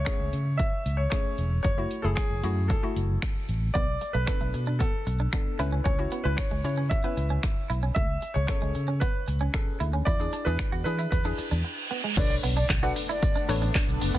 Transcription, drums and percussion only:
0.06 finger snap loud
0.06 kick loud
0.06 closed hi-hat medium
0.33 closed hi-hat medium
0.59 kick loud
0.59 closed hi-hat medium
0.86 closed hi-hat medium
1.12 finger snap loud
1.12 kick loud
1.12 closed hi-hat medium
1.38 closed hi-hat medium
1.65 kick loud
1.65 closed hi-hat medium
1.91 closed hi-hat medium
2.17 finger snap loud
2.17 kick loud
2.17 closed hi-hat medium
2.44 closed hi-hat medium
2.70 kick loud
2.70 closed hi-hat medium
2.96 closed hi-hat medium
3.22 finger snap loud
3.22 kick loud
3.22 closed hi-hat medium
3.49 closed hi-hat medium
3.75 kick loud
3.75 closed hi-hat medium
4.01 closed hi-hat medium
4.27 finger snap loud
4.27 kick loud
4.27 closed hi-hat medium
4.54 closed hi-hat medium
4.80 kick loud
4.80 closed hi-hat medium
5.07 closed hi-hat medium
5.33 finger snap loud
5.33 kick loud
5.33 closed hi-hat medium
5.59 closed hi-hat medium
5.85 kick loud
5.85 closed hi-hat medium
6.12 closed hi-hat medium
6.38 finger snap loud
6.38 kick loud
6.38 closed hi-hat medium
6.65 closed hi-hat medium
6.91 kick loud
6.91 closed hi-hat medium
7.17 closed hi-hat medium
7.43 finger snap loud
7.43 kick loud
7.43 closed hi-hat medium
7.70 closed hi-hat medium
7.96 kick loud
7.96 closed hi-hat medium
8.22 closed hi-hat medium
8.48 finger snap loud
8.48 kick loud
8.48 closed hi-hat medium
8.75 closed hi-hat medium
9.01 kick loud
9.01 closed hi-hat medium
9.28 closed hi-hat medium
9.54 finger snap loud
9.54 kick loud
9.54 closed hi-hat medium
9.80 closed hi-hat medium
10.07 kick loud
10.07 closed hi-hat medium
10.07 shaker medium
10.20 shaker medium
10.33 closed hi-hat medium
10.33 shaker medium
10.46 shaker medium
10.59 finger snap loud
10.59 kick loud
10.59 closed hi-hat medium
10.59 shaker medium
10.72 shaker medium
10.86 closed hi-hat medium
10.86 shaker medium
10.99 shaker medium
11.12 kick loud
11.12 closed hi-hat medium
11.12 shaker medium
11.25 shaker medium
11.39 closed hi-hat medium
11.39 shaker medium
11.51 shaker medium
12.17 kick loud
12.17 closed hi-hat medium
12.17 crash loud
12.17 shaker medium
12.30 shaker medium
12.43 open hi-hat medium
12.43 shaker medium
12.57 shaker medium
12.70 kick loud
12.70 clap loud
12.70 closed hi-hat medium
12.70 tambourine medium
12.70 shaker medium
12.83 shaker medium
12.96 open hi-hat medium
12.96 shaker medium
13.09 shaker medium
13.23 kick loud
13.23 closed hi-hat medium
13.23 shaker medium
13.36 shaker medium
13.49 open hi-hat medium
13.49 shaker medium
13.62 shaker medium
13.75 kick loud
13.75 clap loud
13.75 closed hi-hat medium
13.75 tambourine medium
13.75 shaker medium
13.89 shaker medium
14.01 open hi-hat medium
14.01 shaker medium
14.14 shaker medium

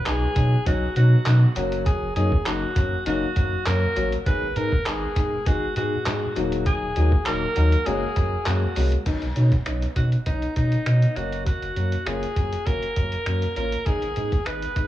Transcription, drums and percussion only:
0.06 clap loud
0.06 closed hi-hat loud
0.36 kick medium
0.36 closed hi-hat medium
0.66 kick loud
0.66 closed hi-hat medium
0.96 closed hi-hat medium
1.26 clap loud
1.26 closed hi-hat loud
1.56 closed hi-hat medium
1.72 closed hi-hat medium
1.86 kick loud
1.86 closed hi-hat medium
2.16 closed hi-hat medium
2.32 kick loud
2.46 clap loud
2.46 closed hi-hat loud
2.76 kick loud
2.76 closed hi-hat medium
3.06 closed hi-hat medium
3.36 kick medium
3.36 closed hi-hat medium
3.66 clap loud
3.66 closed hi-hat loud
3.96 closed hi-hat medium
4.12 closed hi-hat medium
4.26 kick loud
4.26 closed hi-hat medium
4.56 closed hi-hat medium
4.72 kick loud
4.86 clap loud
4.86 closed hi-hat loud
5.16 kick medium
5.16 closed hi-hat medium
5.46 kick loud
5.46 closed hi-hat medium
5.76 closed hi-hat medium
6.06 clap loud
6.06 closed hi-hat loud
6.36 closed hi-hat medium
6.52 closed hi-hat medium
6.66 kick loud
6.66 closed hi-hat medium
6.96 closed hi-hat medium
7.12 kick loud
7.26 clap loud
7.26 closed hi-hat loud
7.56 closed hi-hat medium
7.72 closed hi-hat medium
7.86 closed hi-hat medium
8.16 kick medium
8.16 closed hi-hat medium
8.46 clap loud
8.46 closed hi-hat loud
8.76 open hi-hat medium
8.92 closed hi-hat medium
9.06 kick loud
9.06 closed hi-hat medium
9.06 crash medium
9.22 closed hi-hat medium
9.36 closed hi-hat medium
9.52 kick medium
9.52 closed hi-hat medium
9.66 finger snap loud
9.66 closed hi-hat medium
9.82 closed hi-hat medium
9.96 kick medium
9.96 closed hi-hat medium
10.12 closed hi-hat medium
10.26 kick medium
10.26 closed hi-hat medium
10.42 closed hi-hat soft
10.56 kick medium
10.56 closed hi-hat medium
10.72 closed hi-hat medium
10.86 finger snap loud
10.86 closed hi-hat loud
11.02 closed hi-hat medium
11.16 closed hi-hat medium
11.32 closed hi-hat medium
11.46 kick loud
11.46 closed hi-hat medium
11.62 closed hi-hat medium
11.76 closed hi-hat medium
11.92 closed hi-hat medium
12.06 finger snap loud
12.06 closed hi-hat loud
12.23 closed hi-hat medium
12.36 kick medium
12.36 closed hi-hat medium
12.53 closed hi-hat medium
12.67 kick medium
12.67 closed hi-hat medium
12.82 closed hi-hat medium
12.96 kick medium
12.96 closed hi-hat medium
13.12 closed hi-hat medium
13.26 finger snap loud
13.26 closed hi-hat loud
13.42 closed hi-hat medium
13.56 closed hi-hat medium
13.72 closed hi-hat medium
13.86 kick loud
13.86 closed hi-hat medium
14.02 closed hi-hat medium
14.16 closed hi-hat medium
14.32 kick medium
14.32 closed hi-hat medium
14.46 finger snap loud
14.46 closed hi-hat medium
14.62 closed hi-hat medium
14.76 kick medium
14.76 closed hi-hat medium

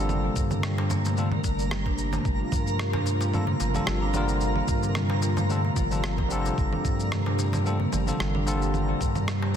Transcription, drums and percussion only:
0.09 low conga medium
0.09 shaker soft
0.36 kick loud
0.36 shaker medium
0.51 darbuka tek soft
0.51 low conga medium
0.51 shaker soft
0.63 cross-stick loud
0.63 shaker soft
0.78 darbuka tek medium
0.90 darbuka ka medium
0.90 low conga medium
0.90 shaker medium
1.05 darbuka tek medium
1.05 shaker soft
1.17 shaker soft
1.32 darbuka ka soft
1.32 low conga medium
1.44 kick medium
1.44 shaker medium
1.59 shaker soft
1.71 cross-stick loud
1.71 low conga medium
1.71 shaker soft
1.86 kick loud
1.86 darbuka tek medium
1.98 shaker medium
2.13 darbuka ka medium
2.13 darbuka tek medium
2.13 low conga medium
2.13 shaker soft
2.25 kick loud
2.25 shaker soft
2.52 kick loud
2.52 low conga medium
2.52 shaker medium
2.67 shaker soft
2.79 cross-stick medium
2.79 shaker soft
2.93 darbuka tek medium
2.93 low conga medium
3.06 darbuka ka medium
3.06 shaker medium
3.21 darbuka tek medium
3.21 shaker soft
3.34 low conga medium
3.34 shaker soft
3.47 darbuka dum medium
3.60 darbuka ka soft
3.60 darbuka tek medium
3.60 shaker medium
3.75 low conga medium
3.75 shaker soft
3.87 cross-stick loud
3.87 shaker soft
4.13 darbuka tek soft
4.13 low conga medium
4.13 shaker medium
4.28 shaker soft
4.41 shaker soft
4.56 low conga medium
4.68 kick loud
4.68 shaker medium
4.83 darbuka tek soft
4.83 shaker soft
4.95 cross-stick medium
4.95 low conga medium
4.95 shaker soft
5.10 darbuka tek medium
5.22 darbuka ka medium
5.22 shaker medium
5.37 darbuka tek medium
5.37 low conga medium
5.37 shaker soft
5.50 shaker soft
5.65 darbuka ka soft
5.76 kick medium
5.76 darbuka ka soft
5.76 low conga medium
5.76 shaker medium
5.91 shaker soft
6.04 cross-stick loud
6.04 shaker soft
6.18 kick loud
6.18 darbuka tek medium
6.18 low conga medium
6.31 shaker medium
6.46 darbuka ka medium
6.46 darbuka tek medium
6.46 shaker soft
6.58 kick loud
6.58 shaker soft
6.73 low conga medium
6.85 kick loud
6.85 shaker medium
7.00 shaker soft
7.12 cross-stick medium
7.12 low conga medium
7.12 shaker soft
7.26 darbuka tek medium
7.39 darbuka ka medium
7.39 shaker medium
7.53 darbuka tek medium
7.53 low conga medium
7.53 shaker soft
7.66 shaker soft
7.80 darbuka dum medium
7.92 darbuka ka soft
7.92 darbuka tek medium
7.92 low conga medium
7.92 shaker medium
8.08 shaker soft
8.20 cross-stick loud
8.20 shaker soft
8.35 low conga medium
8.47 darbuka tek soft
8.47 shaker medium
8.62 shaker soft
8.74 low conga medium
8.74 shaker soft
9.01 kick medium
9.01 shaker medium
9.15 darbuka tek soft
9.15 low conga medium
9.15 shaker soft
9.28 cross-stick loud
9.28 shaker soft
9.42 darbuka tek medium

